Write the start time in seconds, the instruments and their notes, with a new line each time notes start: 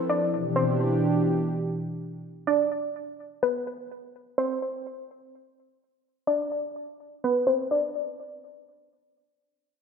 Already playing: analog synth pad F3 C4 E4 A4
0.09 synth pluck D5
0.33 analog synth pad B2 E3 D4 G4
0.56 synth pluck C5
2.47 synth pluck D5
3.43 synth pluck B4
4.38 synth pluck C5
6.27 synth pluck D5
7.24 synth pluck B4
7.47 synth pluck C5
7.71 synth pluck D5